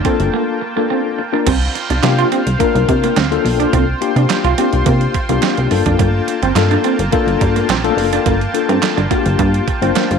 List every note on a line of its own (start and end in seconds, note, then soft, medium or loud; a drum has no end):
0.00 1.43 A#3 medium
0.00 1.43 F4 medium
0.00 1.42 G5 medium
0.00 1.43 A5 medium
0.05 0.60 A#3 medium
0.05 0.15 C4 medium
0.05 0.60 D4 medium
0.05 0.60 F4 medium
0.05 0.60 A4 medium
0.05 kick loud
0.05 closed hi-hat medium
0.20 0.30 G1 medium
0.20 closed hi-hat medium
0.34 0.43 A#3 medium
0.61 muted clean electric guitar stroke soft
0.76 1.20 A#3 medium
0.76 0.85 A#3 medium
0.76 1.20 D4 medium
0.76 1.20 F4 medium
0.76 1.20 A4 medium
0.90 1.00 C4 medium
1.19 muted clean electric guitar stroke soft
1.32 1.46 A#3 loud
1.32 1.46 D4 medium
1.32 1.42 D4 medium
1.32 1.47 F4 medium
1.32 1.47 A#4 medium
1.46 1.68 C2 loud
1.46 1.56 C4 medium
1.46 10.19 F4 medium
1.46 5.67 C5 medium
1.46 3.71 F5 medium
1.46 10.19 G5 medium
1.46 kick loud
1.46 closed hi-hat loud
1.46 crash loud
1.75 muted clean electric guitar stroke soft
1.75 closed hi-hat medium
1.90 2.00 C2 medium
1.90 1.99 D4 medium
1.90 closed hi-hat medium
2.03 2.25 C3 medium
2.03 2.48 A#3 loud
2.03 2.48 D4 medium
2.03 2.48 F4 medium
2.03 2.48 G4 loud
2.03 muted clean electric guitar stroke soft
2.03 snare loud
2.03 clap loud
2.03 closed hi-hat loud
2.19 2.27 F4 medium
2.19 closed hi-hat soft
2.32 2.42 C4 medium
2.32 closed hi-hat medium
2.47 2.57 C2 medium
2.47 closed hi-hat medium
2.59 3.14 A#3 loud
2.59 2.70 A#3 medium
2.59 3.15 D4 medium
2.59 3.15 F4 medium
2.59 3.15 A#4 loud
2.59 kick loud
2.59 closed hi-hat medium
2.75 2.85 C2 loud
2.75 closed hi-hat soft
2.89 3.10 C3 loud
2.89 muted clean electric guitar stroke soft
2.89 kick loud
2.89 closed hi-hat medium
3.04 3.12 A#3 medium
3.04 closed hi-hat medium
3.16 3.38 D2 medium
3.16 3.26 C4 medium
3.16 snare loud
3.16 clap medium
3.16 closed hi-hat medium
3.31 3.86 A#3 loud
3.31 3.86 D4 medium
3.31 3.86 F4 loud
3.31 3.87 A4 loud
3.31 closed hi-hat soft
3.45 3.66 B1 medium
3.45 muted clean electric guitar stroke soft
3.45 open hi-hat medium
3.60 3.68 D4 medium
3.60 closed hi-hat medium
3.73 3.95 C2 loud
3.73 3.83 C4 medium
3.73 5.69 C6 medium
3.73 kick loud
3.73 closed hi-hat loud
4.01 4.46 A#3 medium
4.01 4.46 D4 medium
4.01 4.46 F4 medium
4.01 4.46 G4 loud
4.01 muted clean electric guitar stroke soft
4.01 closed hi-hat medium
4.16 4.26 C3 medium
4.16 4.25 D4 medium
4.16 closed hi-hat medium
4.30 muted clean electric guitar stroke soft
4.30 snare loud
4.30 clap medium
4.30 closed hi-hat loud
4.44 4.55 C2 medium
4.44 4.53 F4 medium
4.44 closed hi-hat soft
4.58 5.13 A#3 medium
4.58 4.68 C4 medium
4.58 5.13 D4 medium
4.58 5.13 F4 medium
4.58 5.13 G4 loud
4.58 closed hi-hat medium
4.73 4.83 C2 medium
4.73 closed hi-hat medium
4.86 5.08 C3 loud
4.86 4.96 A#3 medium
4.86 kick loud
4.86 closed hi-hat loud
5.01 closed hi-hat soft
5.14 muted clean electric guitar stroke medium
5.14 kick loud
5.14 closed hi-hat medium
5.29 5.40 C2 loud
5.29 5.69 A#3 medium
5.29 5.38 A#3 medium
5.29 5.70 D4 medium
5.29 5.70 F4 medium
5.29 5.72 G4 medium
5.29 closed hi-hat medium
5.42 5.52 C4 medium
5.42 snare loud
5.42 clap medium
5.42 closed hi-hat medium
5.58 5.68 C2 medium
5.58 closed hi-hat soft
5.70 5.83 G1 medium
5.70 6.40 A#3 medium
5.70 10.19 A#3 medium
5.70 6.40 D4 medium
5.70 6.40 F4 medium
5.70 6.40 A4 medium
5.70 10.19 A5 medium
5.70 muted clean electric guitar stroke soft
5.70 open hi-hat medium
5.86 5.96 F#1 medium
5.86 5.95 D4 medium
5.86 kick medium
5.86 closed hi-hat medium
5.99 6.21 G1 loud
5.99 6.09 A#3 medium
5.99 kick loud
5.99 closed hi-hat loud
6.28 muted clean electric guitar stroke soft
6.28 closed hi-hat medium
6.42 6.53 G1 loud
6.42 6.51 C4 medium
6.42 closed hi-hat medium
6.55 6.77 G2 loud
6.55 7.00 A#3 loud
6.55 7.01 D4 medium
6.55 7.01 F4 loud
6.55 7.01 A4 loud
6.55 muted clean electric guitar stroke soft
6.55 snare loud
6.55 clap medium
6.55 closed hi-hat loud
6.71 6.79 D4 medium
6.71 closed hi-hat soft
6.84 6.94 C4 medium
6.84 closed hi-hat medium
6.99 7.09 G1 loud
6.99 closed hi-hat medium
7.12 7.67 A#3 loud
7.12 7.22 A#3 medium
7.12 7.67 D4 loud
7.12 7.68 F4 loud
7.12 7.68 A4 loud
7.12 kick loud
7.12 closed hi-hat medium
7.27 7.37 G1 medium
7.27 closed hi-hat soft
7.41 7.63 G2 loud
7.41 muted clean electric guitar stroke medium
7.41 kick loud
7.41 closed hi-hat medium
7.56 7.65 A#3 medium
7.56 closed hi-hat soft
7.69 7.90 A#1 loud
7.69 7.79 C4 medium
7.69 snare loud
7.69 clap loud
7.69 closed hi-hat loud
7.84 7.90 A3 medium
7.84 8.39 D4 loud
7.84 8.39 F4 loud
7.84 8.39 A4 loud
7.84 closed hi-hat soft
7.90 8.42 A#3 loud
7.97 8.19 F#1 medium
7.97 muted clean electric guitar stroke soft
7.97 open hi-hat medium
8.13 8.21 D4 medium
8.13 closed hi-hat medium
8.26 8.47 G1 loud
8.26 8.36 A#3 medium
8.26 kick loud
8.26 closed hi-hat loud
8.41 closed hi-hat soft
8.54 8.99 A#3 medium
8.54 8.99 D4 medium
8.54 8.99 F4 medium
8.54 8.99 A4 medium
8.54 muted clean electric guitar stroke soft
8.54 closed hi-hat medium
8.69 8.79 G2 loud
8.69 8.78 C4 medium
8.69 closed hi-hat medium
8.83 muted clean electric guitar stroke soft
8.83 snare loud
8.83 clap loud
8.83 closed hi-hat loud
8.97 9.08 G1 medium
8.97 9.06 D4 medium
8.97 closed hi-hat soft
9.11 9.66 A#3 medium
9.11 9.20 A#3 medium
9.11 9.66 D4 medium
9.11 9.66 F4 medium
9.11 9.18 F#4 medium
9.11 kick loud
9.11 closed hi-hat medium
9.18 9.69 G4 medium
9.26 9.36 G1 loud
9.26 closed hi-hat soft
9.39 9.60 G2 loud
9.39 9.49 A#3 medium
9.39 kick loud
9.39 closed hi-hat medium
9.54 closed hi-hat soft
9.68 muted clean electric guitar stroke soft
9.68 kick loud
9.68 closed hi-hat medium
9.81 9.92 G1 medium
9.81 10.19 A#3 medium
9.81 9.91 C4 medium
9.81 10.19 D4 medium
9.81 10.19 F4 medium
9.81 10.19 C5 loud
9.81 closed hi-hat medium
9.95 10.05 A#3 medium
9.95 snare loud
9.95 clap medium
9.95 closed hi-hat loud
10.11 10.19 G1 medium
10.11 closed hi-hat soft